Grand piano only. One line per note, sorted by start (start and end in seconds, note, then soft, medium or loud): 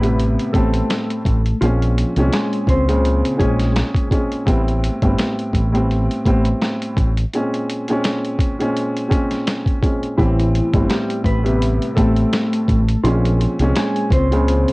0.00 0.49 A2 loud
0.00 0.51 C3 loud
0.00 0.50 G3 medium
0.00 0.50 B3 medium
0.53 1.37 A2 loud
0.53 1.37 G3 medium
0.53 1.38 B3 medium
0.53 1.38 C4 loud
1.61 2.12 A#2 loud
1.61 2.12 G#3 medium
1.61 2.13 C4 medium
1.61 2.13 C#4 loud
2.17 2.82 A#2 loud
2.17 2.82 G#3 medium
2.17 2.83 C4 medium
2.17 2.83 C#4 loud
2.87 3.35 A#2 loud
2.87 3.37 C#3 loud
2.87 3.36 G#3 medium
2.87 3.36 C4 medium
3.36 4.04 A#2 medium
3.36 4.05 G#3 medium
3.36 4.05 C4 medium
3.36 4.06 C#4 loud
4.10 4.44 A#2 medium
4.10 4.44 G#3 medium
4.10 4.44 C4 medium
4.10 4.45 C#4 medium
4.46 4.97 A2 loud
4.46 4.97 G3 medium
4.46 4.98 B3 medium
4.46 4.98 C4 loud
5.02 5.67 A2 loud
5.02 5.68 G3 medium
5.02 5.68 B3 medium
5.02 5.68 C4 loud
5.72 6.21 A2 loud
5.72 6.21 G3 medium
5.72 6.22 B3 loud
5.72 6.22 C4 loud
6.25 7.08 A2 loud
6.25 7.09 G3 medium
6.25 7.09 B3 medium
6.25 7.10 C4 loud
7.33 7.84 A#2 medium
7.33 7.84 G#3 medium
7.33 7.84 C4 medium
7.33 7.85 C#4 loud
7.88 8.53 A#2 loud
7.88 8.54 G#3 medium
7.88 8.54 C4 medium
7.88 8.55 C#4 loud
8.59 9.06 A#2 loud
8.59 9.07 G#3 medium
8.59 9.08 C4 medium
8.59 9.08 C#4 loud
9.08 9.76 A#2 medium
9.08 9.76 G#3 medium
9.08 9.77 C4 medium
9.08 9.77 C#4 loud
9.81 10.15 A#2 medium
9.81 10.15 G#3 medium
9.81 10.16 C4 medium
9.81 10.16 C#4 medium
10.17 10.68 A2 medium
10.17 10.68 G3 medium
10.17 10.69 B3 medium
10.17 10.69 C4 loud
10.73 11.38 A2 loud
10.73 11.39 G3 medium
10.73 11.39 B3 medium
10.73 11.40 C4 loud
11.43 11.92 A2 loud
11.43 11.93 C3 loud
11.43 11.93 G3 medium
11.43 11.93 B3 medium
11.96 12.80 A2 loud
11.96 12.80 G3 medium
11.96 12.81 B3 medium
11.96 12.81 C4 loud
13.05 13.55 A#2 loud
13.05 13.55 G#3 medium
13.05 13.56 C4 medium
13.05 13.56 C#4 loud
13.60 14.25 A#2 loud
13.60 14.25 G#3 medium
13.60 14.26 C4 medium
13.60 14.26 C#4 loud
14.30 14.73 A#2 loud
14.30 14.73 C#3 loud
14.30 14.73 G#3 medium
14.30 14.73 C4 medium